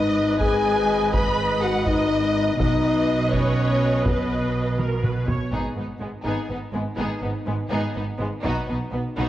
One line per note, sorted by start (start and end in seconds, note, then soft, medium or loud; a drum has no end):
0.00 2.59 G#1 medium
0.00 2.60 G#2 medium
0.00 0.36 D#4 medium
0.00 2.55 B4 medium
0.00 0.36 D#5 medium
0.00 0.37 D#5 medium
0.00 2.55 D#5 medium
0.40 1.12 G#4 medium
0.40 1.12 G#5 medium
0.40 taiko medium
1.13 1.61 B4 medium
1.13 1.62 B5 medium
1.13 1.61 B5 medium
1.13 taiko medium
1.62 1.87 F#4 medium
1.62 1.86 F#5 medium
1.86 2.57 D#4 medium
1.86 2.58 D#5 medium
1.86 2.59 D#5 medium
1.86 taiko medium
2.58 5.28 B1 medium
2.58 5.28 B2 medium
2.58 3.30 D#4 medium
2.58 4.70 B4 medium
2.58 4.70 D#5 medium
2.58 3.31 D#5 medium
2.58 taiko medium
3.33 4.07 C#4 medium
3.33 4.06 C#5 medium
3.33 taiko medium
4.05 4.78 B3 medium
4.05 4.78 B4 soft
4.05 taiko medium
4.79 5.01 A#4 medium
4.79 taiko high medium
5.03 5.28 B4 soft
5.03 taiko mid medium
5.28 5.52 C#5 soft
5.28 taiko low medium
5.51 5.60 G#1 soft
5.51 5.59 G#2 soft
5.51 8.40 B3 soft
5.51 5.75 B3 soft
5.51 8.40 D#4 soft
5.51 5.74 D#4 soft
5.51 5.75 G#4 soft
5.51 taiko soft
5.76 5.85 G#1 soft
5.76 5.84 G#2 soft
5.76 5.84 B3 soft
5.76 5.85 B3 soft
5.76 5.85 D#4 soft
6.00 6.08 G#1 soft
6.00 6.08 G#2 soft
6.00 6.08 G#3 soft
6.00 6.08 B3 soft
6.00 6.09 B3 soft
6.24 6.33 G#1 soft
6.24 6.32 G#2 soft
6.24 6.48 B3 medium
6.24 6.47 D#4 soft
6.24 6.48 G#4 soft
6.49 6.58 G#1 soft
6.49 6.57 G#2 soft
6.49 6.57 B3 soft
6.49 6.58 B3 soft
6.49 6.58 D#4 soft
6.73 6.82 G#1 soft
6.73 6.81 G#2 soft
6.73 6.81 G#3 soft
6.73 6.82 B3 soft
6.98 7.06 G#1 medium
6.98 7.06 G#2 medium
6.98 7.21 B3 medium
6.98 7.21 D#4 soft
6.98 7.21 G#4 medium
7.22 7.31 G#1 soft
7.22 7.30 G#2 soft
7.22 7.30 B3 soft
7.22 7.30 D#4 soft
7.46 7.55 G#1 soft
7.46 7.54 G#2 soft
7.46 7.54 G#3 soft
7.46 7.55 B3 soft
7.71 7.79 G#1 medium
7.71 7.79 G#2 medium
7.71 7.94 B3 medium
7.71 7.94 D#4 medium
7.71 7.94 G#4 medium
7.95 8.04 G#1 soft
7.95 8.03 G#2 soft
7.95 8.03 B3 soft
7.95 8.04 B3 soft
7.95 8.04 D#4 soft
8.18 8.28 G#1 soft
8.18 8.28 G#2 soft
8.18 8.26 G#3 medium
8.18 8.27 B3 soft
8.18 8.28 B3 soft
8.42 8.53 B1 medium
8.42 8.52 B2 medium
8.42 8.66 B3 medium
8.42 9.29 B3 medium
8.42 8.66 D#4 medium
8.42 9.29 D#4 medium
8.42 8.67 F#4 medium
8.42 taiko medium
8.68 8.77 B1 soft
8.68 8.77 B2 soft
8.68 8.76 B3 soft
8.68 8.77 B3 soft
8.68 8.77 D#4 soft
8.92 9.01 B1 soft
8.92 9.01 B2 soft
8.92 9.00 B3 soft
8.92 9.01 B3 soft
8.92 9.02 B3 soft
9.17 9.26 B1 medium
9.17 9.25 B2 medium
9.17 9.29 B3 medium
9.17 9.29 D#4 medium
9.17 9.29 F#4 medium